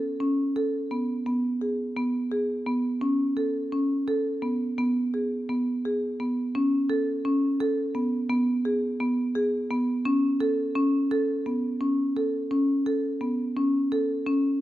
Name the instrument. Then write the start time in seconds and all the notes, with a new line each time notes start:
marimba
Already playing: A4
0.20 C#4
0.56 A4
0.91 B3
1.26 B3
1.61 G#4
1.97 B3
2.32 G#4
2.66 B3
3.01 C#4
3.37 A4
3.72 C#4
4.08 A4
4.42 B3
4.78 B3
5.14 G#4
5.49 B3
5.85 G#4
6.20 B3
6.55 C#4
6.90 A4
7.25 C#4
7.60 A4
7.95 B3
8.30 B3
8.65 G#4
9.00 B3
9.35 G#4
9.70 B3
10.05 C#4
10.40 A4
10.75 C#4
11.11 A4
11.46 B3
11.81 C#4
12.17 A4
12.51 C#4
12.86 A4
13.21 B3
13.57 C#4
13.92 A4
14.26 C#4